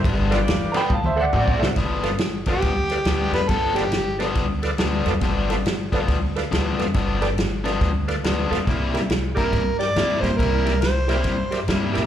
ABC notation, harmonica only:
X:1
M:4/4
L:1/8
Q:"Swing" 1/4=139
K:Gmix
V:1 name="Harmonica"
z8 | z3 G4 B | A G2 z4 z | z8 |
z8 | z3 _B2 d2 c | _B2 c4 z2 |]